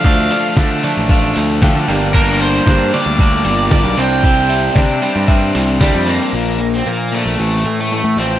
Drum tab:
CC |--------|x-------|--------|--------|
HH |-o-o-o-o|-o-o-o-o|-o-o-o-o|--------|
SD |--oo--o-|--oo--o-|--o---o-|--------|
BD |o-o-o-o-|o-o-o-o-|o-o-o-o-|--------|